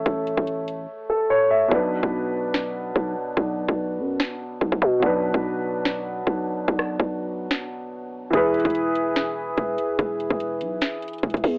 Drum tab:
HH |x-----------x-----------x-----------x-----------------------------------------------------------|------------------------------------------------------------------------------------------------|------------------------------------------------------------------------------------------------|------------------------------------------------------------------------------------------------|
SD |------------------------------------------------------------------------------------------------|------------------------------------------------o-----------------------------------------------|------------------------------------------------o-----------------------------------------------|------------------------------------------------o-----------------------------------------------|
BD |o-----------------o-----------------------------------------------------------------------------|o-----------------o-----------------------------------------------------o-----------------------|o-----------------o-----------------------------------------------------o-----o-----o-----------|o-----------------o-----------------------------------------------------o-----------------------|

HH |------------------------------------------------------------------------------------------------|x-----------x--x--x--x--x-----------x-----------x-----------------------x-----------x-----------|x-----------x-----------x-----------x-----------x-----------x--x--x--x--x---x---x---o-----------|
SD |------r-----------------------------------------o-----------------------------------------------|------------------------------------------------o-----------------------------------------------|------------------------------------------------o-----------------------------------------------|
BD |o-----------------o-----------------------------------------------------------------------------|o-----------------o-----------------------------------------------------o-----------------------|o-----------------o-----------------------------------------------------o-----o-----o-----------|